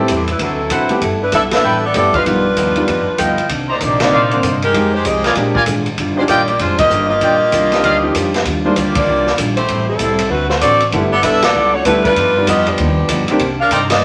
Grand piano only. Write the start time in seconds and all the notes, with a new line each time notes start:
0.90 E3 A3 B3 G4
1.95 E3 A3 B3 G4
2.25 D#3 G3 B3 F4
2.77 D#3 G3 B3 F4
4.00 D3 A#3 C4 D#4
4.32 D3 A#3 C4 D4
4.74 F3 G#3 D#4 G4
5.36 F3 A#3 D4 G4
6.16 F3 D4 D#4 G4
7.72 F3 D4 D#4 G4
8.03 F3 D#4 F4 G4
8.65 D#3 G3 A#3 D4 F4
10.92 D3 G3 A3 B3 E4
11.86 D3 G3 A3 B3 E4
12.36 D#3 G3 B3 D4 F4
13.30 D#3 A#3 C4 D4 G4